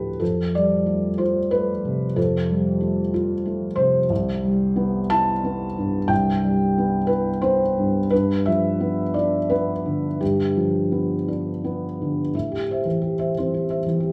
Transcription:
Already playing: D2 A2 F3 A3 F4 G4 A4 B4
0.20 F2 A4
0.55 G3 D5
0.86 A3
1.18 F4 C5
1.51 A3 B4
1.85 C3
2.16 F2 A4
2.50 G3
2.81 A3
3.14 F4
3.46 A3
3.76 C3 C5
4.10 C2
4.44 G3
4.76 B3
5.10 E4 A5
5.44 B3
5.78 G2
6.08 C2 G5
6.45 G3
6.78 B3
7.07 E4 B4
7.42 B3 C5
7.78 G2
8.10 G2 B4
8.46 F3 E5
8.80 B3
9.14 D4 D5
9.50 B3 B4
9.86 D3
10.21 G2 G4
10.56 F3
10.92 B3
11.28 D4
11.64 B3
12.02 D3
12.34 A2 E5
12.52 G4
12.71 C5 E5
12.85 E3
13.02 G4
13.19 C5 E5
13.38 E3 C4 C5
13.54 G4
13.70 C5 E5
13.86 E3
14.00 G4

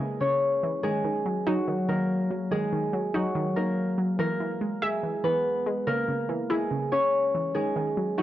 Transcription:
Already playing: E3 G#3 A#3 E4 G#4 A#4
0.00 C#3
0.21 C#3 C#4 C#5
0.63 E3
0.83 D#3 G#3 G#4
1.04 D#3
1.25 F#3
1.46 F#3 D#4 F#4
1.68 D#3
1.88 D#3 A#3 A#4
2.31 F#3
2.51 D#3 G#3 G#4
2.72 D#3
2.93 F#3
3.14 F#3 D#4 F#4
3.35 D#3
3.56 D#3 A#3 A#4
3.98 F#3
4.19 E3 A#3 A#4
4.40 E3
4.61 G#3
4.82 G#3 G#4 E5
5.03 E3
5.24 E3 B3 B4
5.66 G#3
5.87 C#3 A#3 A#4
6.08 C#3
6.29 E3
6.50 G#3 E4 G#4
6.71 C#3
6.92 C#3 C#4 C#5
7.35 E3
7.54 D#3 G#3 G#4
7.76 D#3
7.97 F#3
8.18 F#3 D#4 F#4

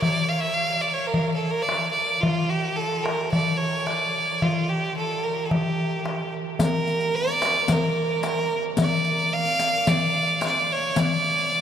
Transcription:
0.02 D5, darbuka dum
0.28 F5
0.40 E5
0.45 darbuka ka
0.54 F5
0.59 darbuka ka
0.73 darbuka ka
0.81 D5
0.93 C#5
1.07 A#4
1.14 darbuka dum
1.34 A4
1.50 A#4
1.56 darbuka ka
1.62 D5
1.69 darbuka tek
1.91 D5
1.97 darbuka ka
2.20 F4, darbuka dum
2.49 G4, darbuka ka
2.64 darbuka ka
2.76 A4, darbuka ka
2.92 darbuka ka
3.03 A#4, darbuka tek
3.31 D5, darbuka dum
3.57 C#5
3.73 darbuka ka
3.86 D5, darbuka tek
4.14 darbuka ka
4.42 F4, darbuka dum
4.69 G4, darbuka ka
4.84 darbuka ka
4.96 A4, darbuka ka
5.23 A#4
5.45 A4
5.51 G4, darbuka dum
5.79 darbuka ka
5.92 darbuka ka
6.06 darbuka tek
6.20 darbuka ka
6.33 darbuka ka
6.59 A#4, riq, darbuka dum
6.87 riq, darbuka ka
7.00 riq
7.15 D5
7.27 riq, darbuka ka
7.42 riq, darbuka tek
7.68 A#4, riq, darbuka dum
7.97 darbuka ka
8.11 darbuka ka
8.23 A#4, riq, darbuka tek
8.38 darbuka ka
8.77 riq, darbuka dum
8.81 D5
9.05 riq, darbuka ka
9.18 riq
9.34 F5
9.45 riq, darbuka ka
9.60 riq
9.87 D5, riq, darbuka dum
10.14 darbuka ka
10.28 darbuka ka
10.41 riq, darbuka tek
10.45 D5
10.56 darbuka ka
10.72 C#5
10.96 D5, riq, darbuka dum
11.24 riq, darbuka ka
11.38 riq

